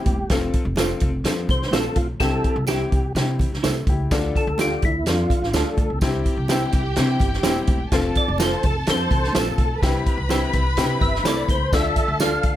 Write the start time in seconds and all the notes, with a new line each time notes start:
Already playing: C4 E4 G4
0.06 E1, kick, closed hi-hat, high conga
0.29 F1 C4 F4 A4, kick, snare, closed hi-hat, tambourine
0.53 kick, closed hi-hat, muted conga
0.65 F1
0.76 C4 F4 A4, snare, closed hi-hat, tambourine, high conga
0.80 C5 F5
1.00 F1, kick, closed hi-hat
1.24 F2 C4 F4 A4, snare, closed hi-hat, tambourine, muted conga
1.49 C2 C5, kick, closed hi-hat, muted conga, low conga
1.62 snare
1.68 A#1 C4 C5, high conga
1.73 F4 A4 C5 F5, snare, closed hi-hat, tambourine
1.96 B1 F4, kick, closed hi-hat, high conga
2.20 C2 C3 C4 E4 G4 A4, kick, snare, closed hi-hat, tambourine, muted conga
2.44 kick, closed hi-hat
2.56 C2
2.67 C4 E4 G4 C5 E5, snare, closed hi-hat, tambourine, high conga
2.92 C2, kick, closed hi-hat
3.15 C3 C4 E4 G4, snare, closed hi-hat, tambourine, muted conga
3.39 kick, closed hi-hat, muted conga, low conga
3.52 C2, snare
3.63 C2 E4 G4 A4 C5 E5, snare, closed hi-hat, tambourine, high conga
3.87 C#2 E4 G4, kick, closed hi-hat, high conga
4.11 D2 D3 D4 F4 A4, kick, snare, closed hi-hat, tambourine, muted conga
4.36 A4, kick, closed hi-hat
4.47 D2
4.58 D4 F4 G4 A4 D5 F5, snare, closed hi-hat, tambourine, high conga
4.82 D2 E4, kick, closed hi-hat
5.06 F2 D4 F4 A4, snare, closed hi-hat, tambourine, muted conga, low conga
5.30 muted upright bass stroke, kick, closed hi-hat, muted conga, low conga
5.42 A1, snare
5.53 D2 D4 F4 A4 D5 F5, snare, closed hi-hat, tambourine, high conga
5.77 D2, kick, closed hi-hat, high conga
5.90 C2
6.01 C2 C3 C4 E4 G4 G5, kick, snare, closed hi-hat, tambourine, muted conga
6.25 kick, closed hi-hat, muted conga
6.37 C2
6.48 C4 E4 G4 C5 E5, snare, closed hi-hat, tambourine, high conga
6.72 C2, kick, closed hi-hat
6.96 C3 C4 E4 G4, snare, closed hi-hat, tambourine, muted conga
7.20 G1, kick, closed hi-hat, muted conga, low conga
7.33 snare
7.43 D#1 C4 E4 G4 C5, snare, closed hi-hat, tambourine, high conga
7.47 G4 E5
7.67 E1, kick, closed hi-hat, high conga
7.92 F1 C4 F4 A4 A5, kick, snare, closed hi-hat, tambourine, muted conga
8.15 D5, kick, closed hi-hat, muted conga
8.28 F1
8.38 C4 F4 A4 C5 F5, snare, closed hi-hat, tambourine, high conga
8.42 A4
8.63 F1 A4, kick, closed hi-hat
8.87 F2 C4 F4 A4, snare, closed hi-hat, tambourine, muted conga
8.91 C5
9.11 C2, kick, closed hi-hat, muted conga, low conga
9.24 snare
9.33 A#1 C4 F4 A4 C5, snare, closed hi-hat, tambourine, high conga
9.37 A4 F5
9.58 B1, kick, closed hi-hat, high conga
9.82 C2 C3 C4 E4 G4 B4 B5, kick, snare, closed hi-hat, tambourine, muted conga
10.06 kick, closed hi-hat
10.17 C2
10.29 C4 E4 G4 C5 E5, snare, closed hi-hat, tambourine, high conga
10.53 C2, kick, closed hi-hat
10.77 C3 C4 E4 G4, snare, closed hi-hat, tambourine, muted conga
11.01 G1 E5, kick, closed hi-hat, muted conga, low conga
11.15 snare
11.24 C2 C4 E4 G4 A4 C5 D5 E5, snare, closed hi-hat, tambourine, high conga
11.48 C#2 C5, kick, closed hi-hat, high conga
11.73 D2 D3 D4 F4 A4 E5 A5, kick, snare, closed hi-hat, tambourine, muted conga
11.96 kick, closed hi-hat, muted conga
12.08 D2
12.20 D4 F4 A4 D5 F5, snare, closed hi-hat, tambourine, high conga
12.43 D2, kick, closed hi-hat